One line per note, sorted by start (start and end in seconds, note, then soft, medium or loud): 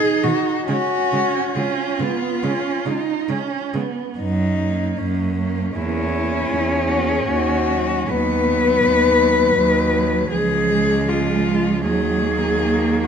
0.00 0.67 D#4 medium
0.00 0.25 G#4 loud
0.23 0.32 B2 medium
0.23 0.31 D#3 medium
0.23 0.67 F#4 medium
0.68 0.76 C#3 medium
0.68 0.76 G#3 medium
0.68 1.45 C#4 medium
0.68 1.57 F#4 loud
1.13 1.21 C#3 medium
1.13 1.21 G#3 medium
1.55 1.64 C#3 medium
1.55 1.64 G#3 medium
1.55 2.02 C#4 medium
1.55 3.73 F4 medium
2.00 2.08 C#3 medium
2.00 2.08 G#3 medium
2.00 2.45 B3 medium
2.43 2.51 C#3 medium
2.43 2.51 G#3 medium
2.43 2.88 C#4 medium
2.86 2.94 C#3 medium
2.86 2.94 G#3 medium
2.86 3.31 D#4 medium
3.29 3.37 C#3 medium
3.29 3.37 G#3 medium
3.29 3.77 C#4 medium
3.74 3.82 C#3 medium
3.74 3.82 G#3 medium
3.74 4.19 B3 medium
4.17 4.89 F#2 medium
4.17 5.00 D#4 medium
4.60 5.36 A#3 soft
4.98 5.66 F#2 medium
4.98 5.77 C#4 medium
5.38 5.75 A#3 soft
5.75 6.42 E2 medium
5.75 6.13 A#3 soft
5.75 8.10 C#4 medium
5.75 6.90 E4 medium
6.15 6.87 A#3 medium
6.51 7.17 E2 medium
6.88 7.26 A#3 soft
6.88 7.10 F#4 medium
7.09 7.27 G#4 medium
7.27 7.99 D#2 medium
7.27 8.10 F#4 medium
7.68 8.45 F#3 medium
8.09 8.74 D#2 medium
8.09 9.56 B3 medium
8.09 10.30 B4 loud
8.47 9.18 F#3 medium
8.84 9.48 D#2 medium
9.20 9.92 F#3 medium
9.57 10.22 D#2 medium
9.57 10.33 F#3 medium
9.94 10.30 F#3 soft
10.31 11.86 C#2 medium
10.31 11.03 F3 medium
10.31 10.70 F3 medium
10.31 11.09 G#4 loud
10.69 11.86 G#3 medium
11.08 11.83 F3 medium
11.08 11.84 F4 medium
11.84 13.07 D#2 medium
11.84 12.25 F#3 medium
11.84 13.07 F#3 medium
11.84 13.05 G#4 medium
12.24 13.07 A#3 medium
13.03 13.07 F#4 medium